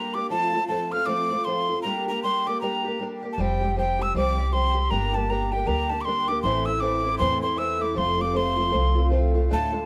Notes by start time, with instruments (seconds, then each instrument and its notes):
Already playing: twelve-string acoustic guitar G3 A#3 D4 G4, tin whistle A#5
0.14 twelve-string acoustic guitar A#3 D4 G4, tin whistle D6
0.30 twelve-string acoustic guitar F3 A3 C4 F4, tin whistle A5
0.53 twelve-string acoustic guitar A3 C4 F4
0.68 twelve-string acoustic guitar F3 A3 C4 F4, tin whistle A5
0.92 twelve-string acoustic guitar A3 C4 F4, tin whistle F6
1.06 twelve-string acoustic guitar F3 A3 C4 F4, tin whistle D6
1.31 twelve-string acoustic guitar A3 C4 F4
1.45 twelve-string acoustic guitar F3 A3 C4, tin whistle C6
1.50 twelve-string acoustic guitar F4
1.69 twelve-string acoustic guitar A3 C4 F4
1.82 twelve-string acoustic guitar G3 A#3, tin whistle A#5
1.86 twelve-string acoustic guitar D4 G4
2.08 twelve-string acoustic guitar A#3 D4 G4, tin whistle A#5
2.23 twelve-string acoustic guitar G3 A#3 D4 G4, tin whistle C6
2.46 twelve-string acoustic guitar A#3 D4 G4, tin whistle D6
2.61 twelve-string acoustic guitar G3 A#3 D4 G4, tin whistle A#5
2.85 twelve-string acoustic guitar A#3 D4 G4
2.99 twelve-string acoustic guitar G3 A#3 D4 G4
3.22 twelve-string acoustic guitar A#3 D4 G4
3.33 tin whistle A5
3.38 upright bass F1, twelve-string acoustic guitar F3 G3 C4 G4, tin whistle G5
3.61 twelve-string acoustic guitar G3 C4 G4
3.75 twelve-string acoustic guitar F3 G3 C4 G4, tin whistle G5
3.99 twelve-string acoustic guitar G3 C4 G4, tin whistle E6
4.14 upright bass C2, twelve-string acoustic guitar F3 G3 C4 G4, tin whistle D6
4.38 twelve-string acoustic guitar G3 C4 G4
4.51 twelve-string acoustic guitar F3 G3 C4 G4, tin whistle C6
4.75 twelve-string acoustic guitar G3 C4 G4
4.90 upright bass G1, twelve-string acoustic guitar G3 A#3 D4 G4, tin whistle A#5
5.13 twelve-string acoustic guitar A#3 D4 G4, tin whistle A5
5.29 twelve-string acoustic guitar G3 A#3 D4 G4, tin whistle A#5
5.52 twelve-string acoustic guitar A#3 D4 G4, tin whistle G5
5.65 upright bass D2, twelve-string acoustic guitar G3 A#3 D4 G4, tin whistle A#5
5.89 twelve-string acoustic guitar A#3 D4 G4, tin whistle A5
6.01 twelve-string acoustic guitar G3, tin whistle C6 D6
6.07 twelve-string acoustic guitar A#3 D4 G4
6.28 twelve-string acoustic guitar A#3 D4 G4, tin whistle D6
6.42 upright bass A1, twelve-string acoustic guitar A2 E3 A3 C4, tin whistle C6
6.46 twelve-string acoustic guitar E4
6.65 twelve-string acoustic guitar A3 E4, tin whistle E6
6.70 twelve-string acoustic guitar C4
6.80 twelve-string acoustic guitar E3 A3 C4 E4, tin whistle D6
7.04 twelve-string acoustic guitar A3 C4 E4
7.18 upright bass E2, twelve-string acoustic guitar A2 E3 A3 C4 E4, tin whistle C6
7.42 twelve-string acoustic guitar A3 C4 E4, tin whistle C6
7.56 twelve-string acoustic guitar E3 A3 C4, tin whistle E6
7.60 twelve-string acoustic guitar E4
7.79 twelve-string acoustic guitar A3 C4 E4, tin whistle D6
7.94 upright bass F1, twelve-string acoustic guitar F3 A3 C4 F4, tin whistle C6
8.18 twelve-string acoustic guitar A3 C4 F4, tin whistle D6
8.33 twelve-string acoustic guitar F3 A3 C4 F4, tin whistle C6
8.56 twelve-string acoustic guitar A3 C4 F4
8.70 upright bass C2, twelve-string acoustic guitar F3 A3 C4 F4
8.95 twelve-string acoustic guitar A3 C4 F4
9.10 twelve-string acoustic guitar F3 A3 C4 F4
9.34 twelve-string acoustic guitar A3 C4 F4
9.49 twelve-string acoustic guitar D2 A2 D3 A3 D4 F4, upright bass D2, tin whistle A5
9.72 twelve-string acoustic guitar D3 A3 D4 F4